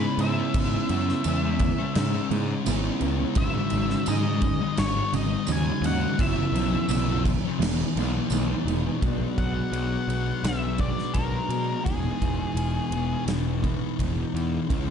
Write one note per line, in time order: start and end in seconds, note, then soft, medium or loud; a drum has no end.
0.00 0.18 C#3 medium
0.00 0.37 C#3 medium
0.00 0.21 G#3 medium
0.00 0.21 B3 loud
0.00 0.37 C#4 medium
0.00 0.21 E4 loud
0.00 0.20 B4 medium
0.04 0.40 G#3 medium
0.18 0.40 G#2 medium
0.18 0.54 C#3 medium
0.18 0.39 G#3 medium
0.18 2.28 E5 medium
0.18 crash medium
0.22 0.38 B3 medium
0.22 0.36 E4 medium
0.37 0.56 G#3 medium
0.37 0.56 B3 medium
0.37 0.58 C#4 medium
0.37 0.57 E4 medium
0.54 0.77 G#1 medium
0.54 0.89 C#3 medium
0.54 1.24 C#3 medium
0.54 1.11 G#3 medium
0.54 0.92 G#3 loud
0.54 1.09 B3 medium
0.54 0.93 C#4 medium
0.54 1.07 E4 loud
0.54 kick loud
0.54 crash medium
0.89 1.12 F#2 medium
0.89 1.24 C#3 medium
0.89 1.28 G#3 medium
0.89 crash medium
0.93 1.29 C#4 medium
1.08 1.27 G#3 medium
1.08 1.26 B3 medium
1.08 1.27 E4 medium
1.08 snare soft
1.24 1.70 E2 medium
1.24 1.60 C#3 loud
1.24 1.59 C#3 medium
1.24 1.47 G#3 medium
1.24 1.46 G#3 loud
1.24 1.44 B3 loud
1.24 tambourine loud
1.24 crash medium
1.28 1.42 C#4 loud
1.28 1.42 E4 medium
1.42 1.61 G#3 medium
1.42 1.62 B3 medium
1.42 1.61 C#4 medium
1.42 1.63 E4 medium
1.47 1.62 G#3 medium
1.59 2.14 C#3 medium
1.59 1.78 G#3 medium
1.59 muted distorted electric guitar stroke soft
1.59 kick medium
1.59 crash medium
1.63 1.78 B3 medium
1.63 1.78 E4 medium
1.78 1.96 G#3 medium
1.78 1.97 C#4 medium
1.78 muted clean electric guitar stroke medium
1.95 2.18 G#2 medium
1.95 2.30 C#3 medium
1.95 2.15 G#3 medium
1.95 2.14 C#4 medium
1.95 snare loud
1.95 crash medium
2.14 2.32 G#3 medium
2.14 2.34 C#4 medium
2.30 2.53 G#2 medium
2.30 2.63 C#3 medium
2.30 2.65 C#3 medium
2.30 2.48 G#3 medium
2.30 2.67 G#3 medium
2.30 2.49 B3 medium
2.30 2.48 E4 medium
2.30 crash medium
2.35 2.69 C#4 medium
2.49 muted clean electric guitar stroke medium
2.65 2.89 G#1 medium
2.65 2.98 C#3 medium
2.65 3.19 C#3 medium
2.65 2.99 G#3 loud
2.65 2.88 G#3 loud
2.65 3.00 B3 loud
2.65 3.01 E4 medium
2.65 tambourine loud
2.65 crash medium
2.69 2.85 C#4 loud
2.85 3.22 G#3 medium
2.85 3.19 C#4 medium
2.99 3.24 C#2 medium
2.99 3.34 C#3 medium
2.99 3.19 G#3 medium
2.99 3.18 B3 medium
2.99 3.16 E4 medium
2.99 crash medium
3.18 3.35 G#3 medium
3.18 3.35 B3 medium
3.18 3.42 C#4 medium
3.18 3.34 E4 medium
3.23 3.37 G#3 medium
3.35 3.59 G#1 medium
3.35 4.06 G#2 loud
3.35 3.71 G#2 medium
3.35 4.07 C#3 loud
3.35 3.72 D#3 medium
3.35 3.90 F#3 loud
3.35 3.90 C#4 loud
3.35 3.88 D#4 loud
3.35 4.08 E5 medium
3.35 kick loud
3.35 crash medium
3.40 3.74 G#3 loud
3.70 3.95 G#1 medium
3.70 4.07 G#2 medium
3.70 4.08 D#3 medium
3.70 crash medium
3.75 4.10 G#3 medium
3.89 4.07 F#3 medium
3.89 4.08 C#4 medium
3.89 4.09 D#4 medium
3.89 snare soft
4.06 4.61 G#2 loud
4.06 4.52 G#2 medium
4.06 4.43 G#2 medium
4.06 4.41 C#3 medium
4.06 4.28 D#3 loud
4.06 4.27 F#3 medium
4.06 4.26 C#4 loud
4.06 4.79 D#5 medium
4.06 tambourine medium
4.06 crash medium
4.10 4.24 G#3 loud
4.10 4.24 D#4 loud
4.25 4.43 D#3 medium
4.25 4.43 F#3 medium
4.25 4.43 G#3 medium
4.25 4.43 C#4 medium
4.25 4.43 D#4 medium
4.42 4.62 C#3 medium
4.42 4.62 F#3 medium
4.42 4.61 C#4 medium
4.42 4.61 D#4 medium
4.42 muted distorted electric guitar stroke medium
4.42 kick medium
4.42 crash medium
4.60 4.78 D#3 medium
4.60 4.79 G#3 medium
4.60 muted clean electric guitar stroke medium
4.77 5.00 G#1 medium
4.77 5.12 G#2 medium
4.77 4.97 D#3 medium
4.77 4.94 G#3 medium
4.77 5.15 C#5 loud
4.77 snare loud
4.77 crash medium
4.95 5.14 D#3 medium
4.95 5.15 G#3 medium
5.13 5.36 G#1 medium
5.13 5.46 G#2 medium
5.13 5.32 C#3 medium
5.13 5.47 D#3 medium
5.13 5.33 F#3 medium
5.13 5.49 G#3 medium
5.13 5.32 C#4 medium
5.13 5.32 D#4 medium
5.13 5.51 D#5 loud
5.13 crash medium
5.33 muted clean electric guitar stroke medium
5.47 5.71 D#2 medium
5.47 6.17 G#2 medium
5.47 6.01 G#2 medium
5.47 5.82 C#3 loud
5.47 5.66 D#3 loud
5.47 5.83 F#3 loud
5.47 5.64 G#3 loud
5.47 5.85 C#4 medium
5.47 5.85 D#4 loud
5.47 tambourine loud
5.47 crash medium
5.52 5.85 G#5 loud
5.65 6.02 D#3 medium
5.65 5.99 G#3 medium
5.81 6.04 D#2 loud
5.81 6.17 C#3 medium
5.81 6.02 F#3 medium
5.81 crash medium
5.86 6.01 C#4 medium
5.86 6.00 D#4 medium
5.86 6.22 F#5 loud
6.00 6.18 D#3 medium
6.00 6.18 F#3 medium
6.00 6.16 G#3 medium
6.00 6.18 C#4 medium
6.00 6.17 D#4 medium
6.17 6.42 F#1 medium
6.17 6.52 F#2 medium
6.17 6.88 F#2 medium
6.17 6.88 C#3 loud
6.17 6.54 C#3 loud
6.17 6.73 E3 medium
6.17 6.55 F#3 loud
6.17 6.72 B3 loud
6.17 6.71 E4 loud
6.17 7.22 E5 medium
6.17 kick loud
6.17 crash medium
6.52 6.75 B1 medium
6.52 6.88 F#2 medium
6.52 6.89 C#3 medium
6.52 6.91 F#3 medium
6.52 crash medium
6.72 6.89 E3 medium
6.72 6.89 B3 medium
6.72 6.90 E4 medium
6.89 7.34 B1 medium
6.89 7.26 F#2 medium
6.89 7.43 F#2 loud
6.89 7.22 C#3 loud
6.89 7.10 C#3 loud
6.89 7.08 E3 loud
6.89 7.07 F#3 loud
6.89 7.07 B3 loud
6.89 7.06 E4 loud
6.89 tambourine loud
6.89 crash medium
7.07 7.24 E3 medium
7.07 7.26 F#3 medium
7.07 7.25 B3 medium
7.07 7.25 E4 medium
7.11 7.26 C#3 medium
7.24 7.42 C#3 medium
7.24 7.41 E3 medium
7.24 7.41 B3 medium
7.24 7.41 E4 medium
7.24 muted distorted electric guitar stroke soft
7.24 kick medium
7.24 crash medium
7.42 7.59 F#3 medium
7.42 muted clean electric guitar stroke soft
7.47 7.61 C#3 medium
7.59 7.83 E1 medium
7.59 7.96 E2 medium
7.59 7.95 E3 medium
7.59 7.97 G#3 medium
7.59 7.98 B3 medium
7.59 7.98 D#4 medium
7.59 snare loud
7.59 crash medium
7.63 7.80 B2 medium
7.63 7.77 E3 loud
7.79 7.98 B2 medium
7.79 7.99 E3 medium
7.96 8.19 B1 medium
7.96 8.31 E2 medium
7.96 8.32 B2 medium
7.96 8.31 E3 medium
7.96 8.15 G#3 medium
7.96 8.15 B3 medium
7.96 8.14 D#4 medium
7.96 crash medium
8.00 8.33 E3 medium
8.15 muted clean electric guitar stroke medium
8.30 8.53 B1 medium
8.30 8.85 E2 medium
8.30 8.52 B2 medium
8.30 8.66 E3 medium
8.30 8.66 G#3 medium
8.30 tambourine loud
8.30 crash medium
8.34 8.49 E3 loud
8.34 8.68 B3 medium
8.34 8.68 D#4 loud
8.50 8.88 B2 soft
8.50 8.84 E3 medium
8.65 8.88 E1 medium
8.65 9.00 E3 medium
8.65 8.87 G#3 medium
8.65 8.86 B3 medium
8.65 8.84 D#4 medium
8.65 crash medium
8.85 9.02 B2 medium
8.85 9.01 E3 medium
8.85 9.02 G#3 medium
8.85 9.01 B3 medium
8.85 9.01 D#4 medium
9.02 9.26 B1 medium
9.02 10.78 B2 medium
9.02 10.44 B2 medium
9.02 10.78 F#3 medium
9.02 10.10 F#3 medium
9.02 10.79 G#3 medium
9.02 10.09 B3 loud
9.02 10.77 D4 loud
9.02 kick loud
9.02 ride medium
9.38 9.61 B1 medium
9.38 10.48 F#5 loud
9.38 kick medium
9.38 ride soft
9.72 9.96 B1 medium
9.72 ride medium
10.08 10.31 B1 medium
10.08 10.46 F#3 medium
10.08 10.47 B3 medium
10.08 ride medium
10.43 10.90 B1 medium
10.43 11.15 B2 medium
10.43 10.82 F#3 medium
10.43 10.78 E5 medium
10.43 snare loud
10.43 ride medium
10.48 10.79 B3 medium
10.78 11.14 B2 medium
10.78 11.14 F#3 medium
10.78 11.16 G#3 medium
10.78 11.18 B3 medium
10.78 11.13 D4 medium
10.78 11.17 D5 medium
10.78 kick medium
10.78 ride medium
10.83 11.17 F#3 medium
10.98 snare soft
11.13 11.38 B1 medium
11.13 11.84 B2 medium
11.13 11.85 B2 medium
11.13 11.84 F#3 medium
11.13 11.86 G#3 medium
11.13 11.85 D4 medium
11.13 11.85 A#4 medium
11.13 kick medium
11.13 ride medium
11.18 11.54 F#3 medium
11.18 11.51 B3 medium
11.49 11.73 B2 medium
11.49 11.85 B3 medium
11.49 ride medium
11.55 11.86 F#3 medium
11.85 12.10 E1 medium
11.85 13.27 E2 medium
11.85 12.94 B2 medium
11.85 13.65 E3 medium
11.85 13.64 G#3 loud
11.85 13.62 B3 medium
11.85 13.61 D#4 loud
11.85 13.24 G#4 medium
11.85 kick loud
11.85 ride medium
11.89 12.92 E3 medium
12.21 12.45 E1 medium
12.21 kick medium
12.21 ride medium
12.55 12.79 E1 medium
12.55 ride medium
12.91 13.15 E1 medium
12.91 13.30 E3 medium
12.91 ride medium
12.96 13.28 B2 medium
13.26 13.74 E1 medium
13.26 13.97 E2 medium
13.26 13.66 B2 medium
13.26 snare medium
13.26 ride medium
13.30 13.64 E3 medium
13.62 14.01 E3 medium
13.62 13.99 E3 medium
13.62 14.01 G#3 medium
13.62 13.97 B3 medium
13.62 13.96 D#4 medium
13.62 kick medium
13.62 ride medium
13.67 13.99 B2 medium
13.98 14.23 E1 medium
13.98 14.67 E2 medium
13.98 14.36 B2 medium
13.98 14.68 E3 medium
13.98 14.34 E3 medium
13.98 14.70 G#3 medium
13.98 14.69 B3 medium
13.98 kick medium
13.98 ride medium
14.03 14.70 D#4 medium
14.34 14.57 E2 medium
14.34 14.69 B2 medium
14.34 14.71 E3 medium
14.34 ride soft
14.69 14.90 C#2 medium
14.69 14.90 C#3 medium
14.69 14.90 G#3 medium
14.69 14.90 C#4 loud
14.69 14.90 C#4 medium
14.69 14.90 E4 loud
14.69 kick loud
14.69 ride medium